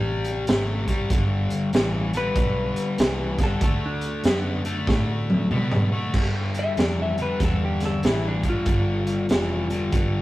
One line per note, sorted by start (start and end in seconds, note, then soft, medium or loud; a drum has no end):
0.00 0.46 A1 medium
0.00 0.43 C3 medium
0.00 0.44 G3 medium
0.24 closed hi-hat medium
0.47 1.09 G#1 medium
0.47 0.84 C3 loud
0.47 0.85 A3 loud
0.47 snare loud
0.47 closed hi-hat medium
0.88 1.09 C3 medium
0.88 1.09 G3 medium
0.88 kick medium
0.88 closed hi-hat medium
1.10 1.48 G1 medium
1.10 1.69 G2 medium
1.10 1.70 D3 medium
1.10 kick loud
1.10 closed hi-hat medium
1.50 closed hi-hat medium
1.73 2.34 A1 loud
1.73 2.10 G2 medium
1.73 2.10 E3 medium
1.73 snare loud
1.73 closed hi-hat medium
2.13 2.34 G2 medium
2.13 2.35 D3 medium
2.13 3.39 B4 loud
2.13 closed hi-hat medium
2.36 2.74 B1 loud
2.36 2.95 G2 medium
2.36 2.95 D3 medium
2.36 kick loud
2.36 closed hi-hat medium
2.76 muted fingered electric bass stroke soft
2.76 closed hi-hat medium
2.98 3.60 C2 medium
2.98 3.36 G2 medium
2.98 3.36 E3 medium
2.98 snare loud
2.98 closed hi-hat medium
3.38 3.60 G2 medium
3.38 3.60 D3 medium
3.38 kick medium
3.38 snare soft
3.38 closed hi-hat medium
3.44 3.62 A4 loud
3.61 4.23 D2 medium
3.61 4.21 D3 medium
3.61 4.21 A3 medium
3.61 3.83 A4 medium
3.61 kick loud
3.61 closed hi-hat medium
3.86 5.07 D4 medium
4.01 closed hi-hat medium
4.24 4.86 F#2 loud
4.24 4.62 D3 medium
4.24 4.62 B3 medium
4.24 snare loud
4.24 closed hi-hat medium
4.65 4.86 D3 medium
4.65 4.86 A3 medium
4.65 closed hi-hat medium
4.87 5.49 A2 medium
4.87 5.47 D3 medium
4.87 5.47 A3 loud
4.87 kick loud
4.87 snare medium
5.30 high tom medium
5.51 6.12 B2 medium
5.51 5.88 D3 medium
5.51 5.88 B3 loud
5.51 mid tom medium
5.71 mid tom loud
5.92 6.12 D3 medium
5.92 6.13 A3 medium
6.14 6.75 G2 medium
6.14 6.73 G2 medium
6.14 6.73 D3 medium
6.14 kick loud
6.14 crash loud
6.55 closed hi-hat medium
6.59 6.78 E5 medium
6.77 7.39 F2 medium
6.77 7.14 G2 medium
6.77 7.14 E3 medium
6.77 6.99 D5 medium
6.77 snare medium
6.77 closed hi-hat medium
7.02 7.21 E5 medium
7.18 7.38 G2 medium
7.18 7.39 D3 medium
7.18 closed hi-hat soft
7.22 7.41 B4 medium
7.40 8.02 E2 medium
7.40 7.99 G2 medium
7.40 8.00 D3 loud
7.40 kick loud
7.40 snare soft
7.40 closed hi-hat medium
7.45 7.63 A4 medium
7.65 7.84 G4 medium
7.80 snare soft
7.80 closed hi-hat medium
7.85 8.05 A4 medium
8.03 8.65 A1 medium
8.03 8.40 G2 medium
8.03 8.41 E3 loud
8.03 8.26 E4 medium
8.03 snare loud
8.03 closed hi-hat medium
8.28 8.47 D4 medium
8.43 8.65 G2 medium
8.43 8.65 D3 medium
8.43 kick medium
8.43 closed hi-hat medium
8.49 10.22 F4 medium
8.66 9.28 G1 medium
8.66 9.25 G2 medium
8.66 9.26 D3 medium
8.66 kick loud
8.66 closed hi-hat medium
9.07 closed hi-hat medium
9.29 9.91 F1 medium
9.29 9.67 G2 medium
9.29 9.67 E3 medium
9.29 snare loud
9.29 closed hi-hat medium
9.70 9.91 G2 medium
9.70 9.91 D3 medium
9.70 closed hi-hat medium
9.92 10.22 G1 medium
9.92 10.22 G2 medium
9.92 10.22 D3 medium
9.92 kick loud
9.92 closed hi-hat medium